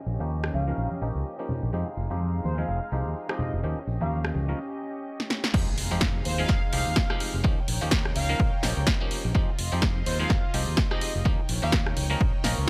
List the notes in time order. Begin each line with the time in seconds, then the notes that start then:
Already playing: C#4 G4 D#5
0.06 A#1, tambourine
0.20 D#2 F3 A#3 C#4 D#4 G4, tambourine
0.30 tambourine
0.44 cross-stick
0.53 C#2 F5, tambourine, high conga
0.68 F3 A#3 C#4 D#4 A#4, tambourine
0.78 A#1, tambourine
0.91 muted fingered electric bass stroke, high conga
1.02 A#1 F3 A#3 C#4 D#4 G4, tambourine
1.15 C#2, tambourine
1.25 tambourine
1.39 F3 A#3 C#4 D#4 G4
1.49 muted fingered electric bass stroke, tambourine, low conga
1.62 A#1, tambourine
1.73 F2 F3 G#3 C4 D#4 G4 F5, tambourine
1.97 F1, tambourine
2.10 F2 F3 G#3 C4 D#4 G4, tambourine, high conga
2.21 tambourine
2.44 D#2 C5, tambourine, high conga
2.58 F3 G#3 C4 D#4 G#4 F5, tambourine
2.68 F1, tambourine
2.92 C2 F3 G#3 C4 D#4 G4, tambourine
3.05 D#2, tambourine
3.16 tambourine
3.29 F3 G#3 C4 D#4 G4 D#5, cross-stick
3.39 muted fingered electric bass stroke, tambourine, low conga
3.53 F1, tambourine
3.63 D#2 F3 A#3 C#4 D#4 G4 D#5, tambourine
3.77 muted fingered electric bass stroke
3.87 A#1, tambourine
4.00 D#2 F3 A#3 C#4 D#4 G4 F5, tambourine, high conga
4.11 tambourine
4.24 cross-stick, tambourine
4.35 C#2, tambourine, high conga
4.48 F3 A#3 C#4 D#4 A#4, tambourine
5.20 snare
5.30 snare
5.44 snare
5.54 F2 F3 G#3 C4 D#4 G4 F5, kick, crash, impact
5.78 F1, open hi-hat
5.91 F2 F3 G#3 C4 D#4 G4
6.01 kick, snare
6.25 D#2 C5, open hi-hat
6.38 F3 G#3 C4 D#4 G#4 F5
6.48 F1, kick, snare
6.72 C2 F3 G#3 C4 D#4 G4 F5, open hi-hat
6.86 D#2
6.96 kick, snare
7.10 F3 G#3 C4 D#4 G4, cross-stick
7.20 muted fingered electric bass stroke, open hi-hat
7.34 F1
7.44 F3 A#3 C#4 D#4 G4 C#5 G5, kick
7.68 A#1, open hi-hat
7.81 D#2 F3 A#3 C#4 D#4 G4
7.91 kick, snare
8.05 cross-stick
8.16 C#2 F5, open hi-hat
8.29 F3 A#3 C#4 D#4 A#4
8.40 A#1, kick
8.63 A#1 F3 A#3 C#4 D#4 G4, snare, open hi-hat
8.77 C#2
8.87 kick, snare
9.01 F3 A#3 C#4 D#4 G4
9.11 muted fingered electric bass stroke, open hi-hat
9.25 A#1
9.35 F3 G#3 C4 D#4 F4 G4 D#5, kick
9.59 F1, open hi-hat
9.72 F2 F3 G#3 C4 D#4 G4
9.82 kick, snare
10.06 D#2 C5, open hi-hat
10.20 F3 G#3 C4 D#4 G#4 F5
10.30 F1, kick, snare
10.54 C2 F3 G#3 C4 D#4 G4, open hi-hat
10.68 D#2
10.77 kick, snare
10.91 F3 G#3 C4 D#4 G4 D#5, cross-stick
11.01 muted fingered electric bass stroke, open hi-hat
11.15 F1
11.25 F3 A#3 C#4 D#4 G4 C#5 G5, kick
11.49 A#1, open hi-hat
11.62 D#2 F3 A#3 C#4 D#4 G4 F5
11.72 kick, snare
11.87 cross-stick
11.97 C#2, open hi-hat
12.10 F3 A#3 C#4 D#4 A#4
12.21 A#1, kick
12.44 A#1 F3 A#3 C#4 D#4 A#4, snare, open hi-hat
12.58 C#2